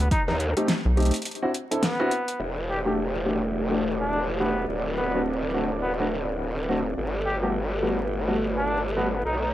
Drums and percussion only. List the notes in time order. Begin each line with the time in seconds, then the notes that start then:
0.11 kick, closed hi-hat
0.28 snare
0.40 closed hi-hat
0.57 cross-stick, closed hi-hat
0.68 snare, closed hi-hat
0.97 closed hi-hat
1.00 closed hi-hat
1.02 closed hi-hat
1.05 closed hi-hat
1.11 closed hi-hat
1.14 closed hi-hat
1.16 closed hi-hat
1.22 closed hi-hat
1.25 closed hi-hat
1.31 closed hi-hat
1.35 closed hi-hat
1.54 closed hi-hat
1.72 closed hi-hat
1.83 snare, closed hi-hat
2.00 cross-stick
2.11 closed hi-hat
2.28 closed hi-hat